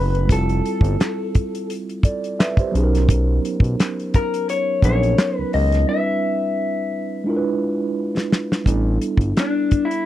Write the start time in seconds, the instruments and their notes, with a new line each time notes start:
Already playing: analog synth bass F#1, tine electric piano A3 B3 C#4 E4 A4, clean electric guitar B4
0.15 closed hi-hat
0.27 analog synth bass F1, tine electric piano G3 C4 E4, kick, closed hi-hat
0.31 tine electric piano F4 A4, clean electric guitar A4
0.49 closed hi-hat
0.66 closed hi-hat
0.81 analog synth bass G1, kick, closed hi-hat
1.00 snare, clap, closed hi-hat
1.35 kick, closed hi-hat
1.55 closed hi-hat
1.70 closed hi-hat
1.89 closed hi-hat
2.03 tine electric piano A4 D5, kick, closed hi-hat
2.24 closed hi-hat
2.39 tine electric piano B4 E5, snare, clap, closed hi-hat
2.57 tine electric piano G4 C5, kick, closed hi-hat
2.71 analog synth bass B1, tine electric piano F#3 B3 C#4, closed hi-hat
2.76 tine electric piano D#4 G#4
2.83 tine electric piano A#4
2.95 snare, closed hi-hat
3.09 kick, closed hi-hat
3.45 closed hi-hat
3.60 analog synth bass B1, kick
3.64 closed hi-hat
3.80 snare, clap, closed hi-hat
4.00 closed hi-hat
4.14 clean electric guitar A#4, kick, closed hi-hat
4.34 closed hi-hat
4.49 clean electric guitar C#5, closed hi-hat
4.82 analog synth bass A#1, tine electric piano F#3 B3 C#4 D#4 A4, clean electric guitar C#5, kick, closed hi-hat
4.91 tine electric piano A#4
5.03 closed hi-hat
5.18 snare, clap, closed hi-hat
5.38 analog synth bass C#2, clean electric guitar B4
5.53 analog synth bass C#2, clean electric guitar D#5, open hi-hat
5.72 snare, closed hi-hat
5.85 tine electric piano G3 C4 D4 E4
5.89 tine electric piano A#4, clean electric guitar E5
5.96 tine electric piano B4
7.24 tine electric piano G#3 D4 E4
7.28 tine electric piano F4 A#4
7.37 tine electric piano B4
8.17 snare
8.32 snare
8.52 snare
8.64 analog synth bass A1, tine electric piano G3 B3 D4, kick, closed hi-hat
8.68 tine electric piano E4 A4
9.02 closed hi-hat
9.17 analog synth bass G1, kick, closed hi-hat
9.37 clean electric guitar D4, snare, clap, closed hi-hat
9.71 kick, closed hi-hat
9.85 clean electric guitar E4
9.91 closed hi-hat